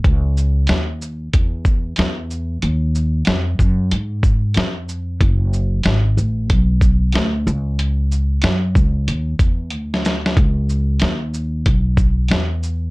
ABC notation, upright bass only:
X:1
M:4/4
L:1/8
Q:"Swing 16ths" 1/4=93
K:D#phr
V:1 name="Upright bass" clef=bass
C,,2 D,,2 E,,2 E,,2 | D,,2 ^E,, F,, G,,2 E,,2 | F,,,2 G,,, =A,,, B,,,2 =D,, C,,- | C,,2 F,, C,, D,, E,, =D,,2 |
C,,2 D,,2 B,,,2 E,,2 |]